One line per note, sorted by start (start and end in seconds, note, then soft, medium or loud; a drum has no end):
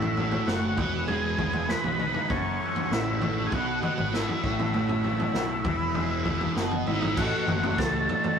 0.00 0.39 A1 medium
0.00 0.46 A2 medium
0.00 0.49 E4 medium
0.00 0.76 A4 medium
0.00 0.76 F#5 medium
0.00 0.78 C#6 medium
0.00 0.77 E6 medium
0.00 floor tom medium
0.17 0.78 F#3 medium
0.17 floor tom medium
0.32 floor tom medium
0.46 0.74 F#1 medium
0.46 0.78 A2 medium
0.46 1.04 F#4 medium
0.46 snare medium
0.77 1.74 E1 medium
0.77 1.36 E3 medium
0.77 2.29 B4 medium
0.77 2.28 G#5 medium
0.77 2.29 D#6 medium
0.77 3.49 E6 medium
0.77 kick loud
0.77 floor tom medium
0.77 mid tom medium
1.07 1.68 G#3 medium
1.07 1.71 G#4 loud
1.07 floor tom medium
1.37 2.29 E3 medium
1.37 kick medium
1.37 floor tom medium
1.37 mid tom medium
1.53 floor tom medium
1.69 2.30 G#3 medium
1.69 2.32 B4 medium
1.69 snare medium
1.84 2.12 B1 medium
1.84 floor tom medium
1.99 2.30 D#4 medium
1.99 mid tom medium
2.14 floor tom medium
2.29 2.58 F#1 medium
2.29 3.51 F#2 medium
2.29 2.93 C#4 medium
2.29 3.51 A4 medium
2.29 5.62 F#5 medium
2.29 3.51 C#6 medium
2.29 kick loud
2.29 floor tom medium
2.61 3.52 E3 medium
2.76 floor tom medium
2.91 3.46 A1 medium
2.91 3.50 C#3 medium
2.91 3.47 E4 medium
2.91 snare medium
3.21 3.52 A3 medium
3.21 floor tom medium
3.21 mid tom medium
3.47 3.53 G#4 medium
3.51 3.80 B1 medium
3.51 3.81 B2 medium
3.51 3.82 F#4 medium
3.51 5.63 A4 medium
3.51 4.43 B5 medium
3.51 4.43 D#6 medium
3.51 kick loud
3.51 floor tom medium
3.82 4.43 B2 medium
3.82 4.15 F#4 medium
3.82 floor tom medium
3.82 mid tom medium
3.98 4.25 G#1 medium
3.98 floor tom medium
3.98 mid tom medium
4.12 4.43 F#3 medium
4.12 6.53 E4 medium
4.12 snare medium
4.29 floor tom medium
4.42 5.26 A1 medium
4.42 4.72 A2 medium
4.42 5.64 C#6 medium
4.42 5.64 E6 medium
4.42 kick medium
4.59 floor tom medium
4.73 5.33 A2 medium
4.73 floor tom medium
4.89 floor tom medium
5.03 5.64 F#3 medium
5.03 floor tom medium
5.20 floor tom medium
5.34 5.62 B1 medium
5.34 5.65 A2 medium
5.34 snare medium
5.64 6.47 E1 medium
5.64 6.25 E3 medium
5.64 6.55 G#4 medium
5.64 6.55 E5 medium
5.64 6.55 B5 medium
5.64 7.15 D#6 medium
5.64 kick medium
5.64 floor tom medium
5.64 mid tom medium
5.95 6.56 G#3 medium
5.95 floor tom medium
6.25 6.56 E3 medium
6.25 kick medium
6.25 floor tom medium
6.25 mid tom medium
6.41 floor tom medium
6.56 6.83 F#1 medium
6.56 7.17 B2 medium
6.56 7.17 F#4 medium
6.56 7.17 D#5 medium
6.56 7.16 B5 medium
6.56 snare medium
6.71 floor tom medium
6.86 7.14 G#1 medium
6.86 7.17 D#4 medium
6.86 7.18 E4 medium
6.86 mid tom medium
7.02 floor tom medium
7.15 7.31 A1 medium
7.15 8.39 A2 medium
7.15 8.39 E3 medium
7.15 8.39 A3 medium
7.15 7.80 F#4 medium
7.15 8.39 F#4 medium
7.15 kick loud
7.15 floor tom medium
7.15 crash loud
7.19 8.39 E5 medium
7.19 8.39 A5 medium
7.19 8.39 C#6 medium
7.48 7.75 F#1 medium
7.48 floor tom medium
7.48 mid tom medium
7.63 floor tom medium
7.78 8.06 C#2 medium
7.78 8.39 A4 medium
7.78 kick loud
7.78 snare medium
8.09 floor tom medium
8.24 floor tom medium